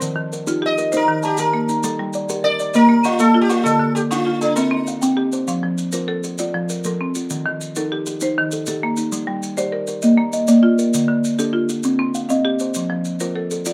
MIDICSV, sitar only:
0, 0, Header, 1, 2, 480
1, 0, Start_track
1, 0, Tempo, 303183
1, 25, Time_signature, 12, 3, 24, 8
1, 21742, End_track
2, 0, Start_track
2, 0, Title_t, "Sitar"
2, 0, Program_c, 0, 104
2, 1042, Note_on_c, 0, 75, 101
2, 1510, Note_off_c, 0, 75, 0
2, 1530, Note_on_c, 0, 70, 92
2, 1970, Note_off_c, 0, 70, 0
2, 1977, Note_on_c, 0, 67, 81
2, 2197, Note_off_c, 0, 67, 0
2, 2203, Note_on_c, 0, 70, 77
2, 2868, Note_off_c, 0, 70, 0
2, 3862, Note_on_c, 0, 74, 106
2, 4359, Note_on_c, 0, 70, 100
2, 4364, Note_off_c, 0, 74, 0
2, 4825, Note_on_c, 0, 65, 90
2, 4852, Note_off_c, 0, 70, 0
2, 5054, Note_off_c, 0, 65, 0
2, 5060, Note_on_c, 0, 69, 90
2, 5399, Note_off_c, 0, 69, 0
2, 5406, Note_on_c, 0, 67, 87
2, 5529, Note_on_c, 0, 65, 85
2, 5546, Note_off_c, 0, 67, 0
2, 5757, Note_on_c, 0, 69, 88
2, 5791, Note_off_c, 0, 65, 0
2, 6246, Note_off_c, 0, 69, 0
2, 6253, Note_on_c, 0, 67, 77
2, 6332, Note_off_c, 0, 67, 0
2, 6505, Note_on_c, 0, 65, 94
2, 6980, Note_off_c, 0, 65, 0
2, 6986, Note_on_c, 0, 62, 80
2, 7209, Note_off_c, 0, 62, 0
2, 7215, Note_on_c, 0, 63, 67
2, 8365, Note_off_c, 0, 63, 0
2, 21742, End_track
0, 0, End_of_file